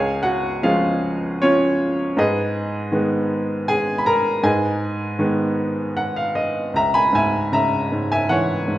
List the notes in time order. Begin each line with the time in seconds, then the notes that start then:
Already playing: C#2 G#4 C#5 F5 G#5
0.23 F#4 F#5
0.63 F3 G#3 C#4 F4 G#4 F5
1.42 C#4 F4 C#5
2.17 G#2 D#4 G#4 B4 D#5
2.92 D#3 G#3 B3
3.68 G#4 G#5
3.98 B5
4.06 A#4 A#5
4.43 G#2 G#4 B4 D#5 G#5
5.19 D#3 G#3 B3
5.97 F#5
6.16 F5
6.35 D#5
6.74 C#2 E5 A#5
6.94 G#5 B5
7.13 G#2 E5 G#5
7.52 C#3 E5 A#5
7.92 G#2
8.12 E5 G#5
8.29 E3 C#5 F#5
8.68 G#2